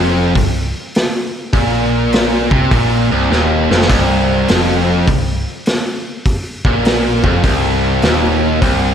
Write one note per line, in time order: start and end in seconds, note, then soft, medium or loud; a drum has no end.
0.00 0.32 F1 medium
0.00 0.35 F2 loud
0.35 0.72 C1 medium
0.35 0.67 C2 medium
0.35 kick medium
0.35 open hi-hat medium
0.95 snare loud
0.95 open hi-hat medium
1.53 2.48 A#1 medium
1.53 2.50 A#2 medium
1.53 kick medium
1.53 open hi-hat soft
2.12 snare loud
2.12 open hi-hat medium
2.51 2.70 C2 medium
2.51 2.71 C3 loud
2.51 kick medium
2.71 3.08 A#1 medium
2.71 3.10 A#2 loud
2.71 kick loud
2.71 open hi-hat medium
3.11 3.30 C1 medium
3.11 3.31 C2 medium
3.31 3.67 D#1 medium
3.31 3.69 D#2 loud
3.31 snare medium
3.70 3.89 F1 medium
3.70 3.89 F2 medium
3.70 snare medium
3.81 snare medium
3.90 4.45 C1 medium
3.90 4.48 C2 medium
3.90 kick loud
3.90 open hi-hat soft
3.90 splash medium
4.48 5.05 F1 medium
4.48 5.08 F2 loud
4.48 snare loud
4.48 open hi-hat medium
5.07 5.44 C1 medium
5.07 5.39 C2 medium
5.07 kick medium
5.07 open hi-hat medium
5.66 snare loud
5.66 open hi-hat medium
6.25 kick medium
6.25 open hi-hat soft
6.65 7.20 A#1 medium
6.65 7.24 A#2 medium
6.65 kick medium
6.85 snare loud
6.85 open hi-hat medium
7.24 7.43 F1 medium
7.24 7.44 F2 loud
7.24 kick loud
7.43 8.00 C1 loud
7.43 8.03 C2 loud
7.43 kick loud
7.43 open hi-hat medium
8.02 8.59 D#1 medium
8.02 8.62 D#2 loud
8.02 snare loud
8.02 open hi-hat medium
8.62 8.94 C1 medium
8.62 8.94 C2 loud
8.62 kick medium
8.62 open hi-hat medium